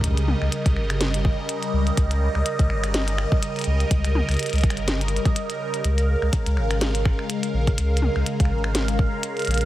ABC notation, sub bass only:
X:1
M:4/4
L:1/16
Q:"Swing 16ths" 1/4=124
K:Ebmix
V:1 name="Sub bass" clef=bass
D,,2 z D,, z D,, G,,,4 z4 D,, z | D,,2 z D,, z D,, G,,,4 z4 D,, z | D,,2 z D,, z D,, G,,,4 z6 | D,,2 z D,, z D,, A,,,4 z4 B,,, z |
D,,2 z D,, z D,, A,,,4 z4 B,,, z |]